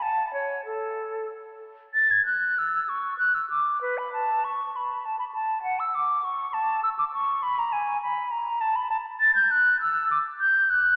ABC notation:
X:1
M:3/4
L:1/16
Q:1/4=100
K:A
V:1 name="Flute"
a2 c2 A4 z4 | a' g' f'2 e'2 c'2 f' e' d'2 | B b a2 c'2 b2 a b a2 | f e' d'2 c'2 a2 e' d' c'2 |
b _b g2 =b2 _b2 a =b a2 | [K:F#phr] a' g' f'2 e'2 d'2 g'2 f'2 |]